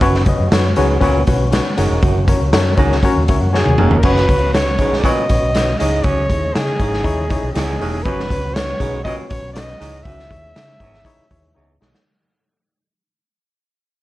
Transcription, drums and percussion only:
0.01 kick, closed hi-hat
0.15 snare
0.26 kick, closed hi-hat
0.52 snare, closed hi-hat
0.76 closed hi-hat
1.01 kick, closed hi-hat
1.27 kick, closed hi-hat
1.52 snare, closed hi-hat
1.78 closed hi-hat
2.02 kick, closed hi-hat
2.28 kick, closed hi-hat
2.53 snare, closed hi-hat
2.77 kick, closed hi-hat
2.92 snare
3.03 kick, closed hi-hat
3.28 kick, closed hi-hat
3.54 snare
3.66 high tom
3.78 mid tom
3.91 floor tom
4.03 kick, crash
4.16 snare
4.29 kick, closed hi-hat
4.55 snare, closed hi-hat
4.78 kick, closed hi-hat
4.93 snare
5.04 kick, closed hi-hat
5.29 kick, closed hi-hat
5.55 snare, closed hi-hat
5.80 closed hi-hat
6.04 kick, closed hi-hat
6.30 kick, closed hi-hat
6.55 snare, closed hi-hat
6.80 kick, closed hi-hat
6.94 snare
7.04 kick, closed hi-hat
7.30 kick, closed hi-hat
7.55 snare, closed hi-hat
7.81 open hi-hat
8.05 kick, closed hi-hat
8.20 snare
8.30 kick, closed hi-hat
8.56 snare, closed hi-hat
8.80 kick, closed hi-hat
9.05 kick, closed hi-hat
9.30 kick, closed hi-hat
9.56 snare, closed hi-hat
9.81 closed hi-hat
10.05 kick, closed hi-hat
10.19 snare
10.31 kick, closed hi-hat
10.56 snare, closed hi-hat
10.80 kick, closed hi-hat
10.94 snare
11.05 kick, closed hi-hat
11.31 kick, closed hi-hat
11.82 snare
11.95 snare

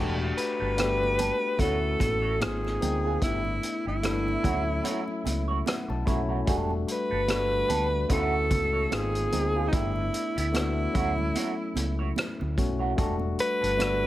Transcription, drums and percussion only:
0.38 closed hi-hat
0.78 cross-stick, closed hi-hat, muted conga, high conga
1.03 muted conga
1.19 closed hi-hat, high conga, low conga
1.59 kick, closed hi-hat, muted conga, high conga
2.00 kick, closed hi-hat, high conga
2.41 cross-stick, closed hi-hat, high conga
2.65 cross-stick, muted conga
2.82 closed hi-hat, high conga, low conga
3.22 kick, closed hi-hat, muted conga
3.45 muted conga
3.63 closed hi-hat
4.03 cross-stick, closed hi-hat, muted conga, high conga
4.28 muted conga
4.44 kick, closed hi-hat, high conga, low conga
4.84 closed hi-hat, high conga
5.08 muted conga
5.26 closed hi-hat, high conga
5.66 cross-stick, closed hi-hat, high conga
5.90 muted conga
6.07 kick, closed hi-hat, high conga, low conga
6.47 kick, closed hi-hat, muted conga
6.70 muted conga
6.88 closed hi-hat
7.28 cross-stick, closed hi-hat, muted conga, high conga
7.70 closed hi-hat, high conga, low conga
8.10 kick, closed hi-hat, high conga
8.51 kick, closed hi-hat, high conga
8.92 cross-stick, closed hi-hat, muted conga, high conga
9.15 closed hi-hat
9.32 closed hi-hat, high conga, low conga
9.73 kick, closed hi-hat, muted conga
9.96 muted conga
10.14 closed hi-hat
10.38 closed hi-hat
10.54 cross-stick, closed hi-hat, muted conga, high conga
10.95 kick, closed hi-hat, high conga, low conga
11.18 low conga
11.35 closed hi-hat, muted conga, high conga
11.76 closed hi-hat, high conga
12.16 cross-stick, closed hi-hat, muted conga, high conga
12.41 muted conga
12.58 kick, closed hi-hat, high conga, low conga
12.98 kick, closed hi-hat, muted conga
13.20 muted conga
13.39 closed hi-hat
13.64 closed hi-hat
13.79 cross-stick, closed hi-hat, muted conga, high conga
14.04 muted conga

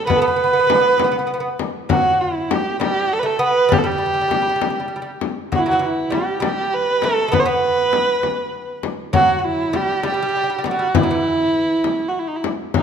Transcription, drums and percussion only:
0.10 frame drum
0.70 frame drum
1.00 frame drum
1.59 frame drum
1.90 frame drum
2.51 frame drum
2.81 frame drum
3.72 frame drum
4.31 frame drum
4.61 frame drum
5.21 frame drum
5.52 frame drum
6.12 frame drum
6.42 frame drum
7.02 frame drum
7.33 frame drum
7.93 frame drum
8.23 frame drum
8.83 frame drum
9.14 frame drum
9.74 frame drum
10.03 frame drum
10.64 frame drum
10.95 frame drum
11.84 frame drum
12.44 frame drum
12.74 frame drum

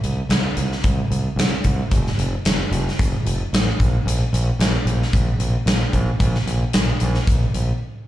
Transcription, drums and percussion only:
0.03 closed hi-hat
0.30 snare, closed hi-hat
0.57 closed hi-hat
0.72 snare
0.83 kick, closed hi-hat
1.11 closed hi-hat
1.39 snare, closed hi-hat
1.64 kick, closed hi-hat
1.91 kick, closed hi-hat
2.06 snare
2.19 closed hi-hat
2.45 snare, closed hi-hat
2.72 closed hi-hat
2.88 snare
2.99 kick, closed hi-hat
3.26 closed hi-hat
3.54 snare, closed hi-hat
3.80 kick, closed hi-hat
4.08 closed hi-hat
4.34 closed hi-hat
4.60 snare, closed hi-hat
4.87 closed hi-hat
5.02 snare
5.13 kick, closed hi-hat
5.40 closed hi-hat
5.67 snare, closed hi-hat
5.93 kick, closed hi-hat
6.20 kick, closed hi-hat
6.35 snare
6.47 closed hi-hat
6.73 snare, closed hi-hat
7.00 closed hi-hat
7.14 snare
7.27 kick, closed hi-hat
7.54 closed hi-hat

